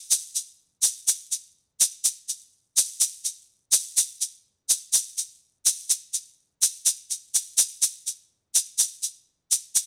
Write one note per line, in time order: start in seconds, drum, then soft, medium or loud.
0.11 shaker medium
0.35 shaker soft
0.83 shaker medium
1.08 shaker medium
1.32 shaker soft
1.81 shaker medium
2.05 shaker medium
2.29 shaker soft
2.77 shaker medium
3.01 shaker medium
3.25 shaker soft
3.72 shaker medium
3.97 shaker medium
4.21 shaker soft
4.70 shaker medium
4.93 shaker medium
5.18 shaker soft
5.66 shaker medium
5.90 shaker medium
6.14 shaker soft
6.62 shaker medium
6.86 shaker medium
7.11 shaker soft
7.35 shaker medium
7.58 shaker medium
7.82 shaker medium
8.07 shaker soft
8.55 shaker medium
8.79 shaker medium
9.03 shaker soft
9.52 shaker medium
9.76 shaker medium